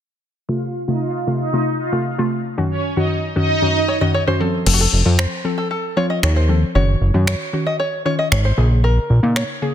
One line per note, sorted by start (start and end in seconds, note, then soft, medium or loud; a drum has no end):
0.49 0.70 C3 medium
0.49 0.70 A3 medium
0.49 0.71 F4 medium
0.49 0.60 F4 medium
0.49 0.59 F5 loud
0.88 1.09 C3 medium
0.88 1.10 A3 medium
0.88 0.99 D#4 medium
0.88 1.10 F4 medium
0.88 0.98 D#5 medium
1.01 1.12 F4 medium
1.01 1.11 F5 medium
1.27 1.41 C3 medium
1.27 1.42 A3 medium
1.27 1.42 F4 medium
1.40 1.61 D#4 medium
1.40 1.61 D#5 medium
1.53 1.75 C3 medium
1.53 1.75 A3 medium
1.53 1.75 F4 medium
1.79 1.90 F4 medium
1.79 1.90 F5 medium
1.92 2.07 C3 medium
1.92 2.07 A3 medium
1.92 2.07 F4 medium
2.18 2.40 C3 medium
2.18 2.40 A3 medium
2.18 2.40 F4 loud
2.58 2.79 F#2 medium
2.58 2.79 D#3 medium
2.58 2.79 C#4 medium
2.58 2.79 F#4 medium
2.71 2.82 C#4 medium
2.71 2.81 C#5 medium
2.97 3.18 F#2 medium
2.97 3.18 D#3 medium
2.97 3.18 C#4 medium
2.97 3.08 D#4 medium
2.97 3.18 F#4 medium
2.97 3.07 D#5 medium
3.36 3.50 F#2 medium
3.36 3.50 D#3 medium
3.36 3.50 C#4 medium
3.36 3.85 D#4 medium
3.36 3.50 F#4 medium
3.36 3.85 D#5 medium
3.62 3.83 F#2 medium
3.62 3.84 D#3 medium
3.62 3.84 C#4 medium
3.62 3.84 F#4 medium
3.88 4.01 C#5 medium
4.01 4.15 F#2 medium
4.01 4.15 D#3 medium
4.01 4.16 C#4 medium
4.01 4.16 F#4 loud
4.01 4.14 D#5 medium
4.14 4.27 C#5 medium
4.27 4.40 F#2 medium
4.27 4.40 D#3 medium
4.27 4.40 C#4 medium
4.27 4.40 F#4 medium
4.27 4.68 C5 medium
4.40 4.61 F3 medium
4.40 4.61 C4 medium
4.40 4.61 A4 loud
4.66 4.87 F1 loud
4.66 4.88 F3 medium
4.66 4.88 C4 medium
4.66 4.74 A4 medium
4.66 4.88 A4 medium
4.66 crash medium
4.73 4.80 F#4 medium
4.80 5.20 A4 medium
4.93 5.03 F1 medium
5.05 5.26 F2 loud
5.05 5.27 F3 medium
5.05 5.27 C4 medium
5.05 5.27 A4 medium
5.19 5.59 C5 medium
5.19 finger snap loud
5.44 5.73 F3 medium
5.44 5.73 C4 medium
5.44 5.73 A4 medium
5.58 5.70 A4 medium
5.71 5.98 A4 medium
5.97 6.25 F3 medium
5.97 6.25 C4 medium
5.97 6.26 F4 medium
5.97 6.10 C#5 medium
6.10 6.22 D#5 medium
6.23 6.64 D#2 medium
6.23 6.36 C#5 medium
6.23 finger snap loud
6.36 6.75 C5 medium
6.49 6.63 F3 medium
6.49 6.63 C4 medium
6.49 6.63 A4 medium
6.75 6.96 F#1 loud
6.75 6.96 D#3 medium
6.75 6.97 C#4 medium
6.75 6.97 F#4 medium
6.75 7.26 C#5 medium
7.01 7.12 F#1 medium
7.14 7.35 F#2 medium
7.14 7.36 D#3 medium
7.14 7.36 C#4 medium
7.14 7.36 F#4 medium
7.27 7.64 C#5 medium
7.27 finger snap loud
7.53 7.82 D#3 medium
7.53 7.82 C#4 medium
7.53 7.82 F#4 medium
7.66 7.79 D#5 medium
7.80 8.04 C#5 medium
8.05 8.34 D#3 medium
8.05 8.34 C#4 medium
8.05 8.34 F4 medium
8.05 8.18 C#5 medium
8.19 8.31 D#5 medium
8.32 8.52 G#1 medium
8.32 8.44 C#5 medium
8.32 finger snap loud
8.45 8.81 C5 medium
8.57 8.99 A#1 loud
8.57 9.10 C#3 medium
8.57 9.10 A#3 medium
8.57 9.10 G#4 medium
8.84 9.32 A#4 medium
9.10 9.20 A#1 medium
9.23 9.44 A#2 medium
9.23 9.44 C#3 medium
9.23 9.44 A#3 medium
9.23 9.45 D#4 medium
9.36 9.74 C#5 medium
9.36 finger snap loud
9.62 9.74 C#3 medium
9.62 9.74 A#3 medium
9.62 9.74 G#4 medium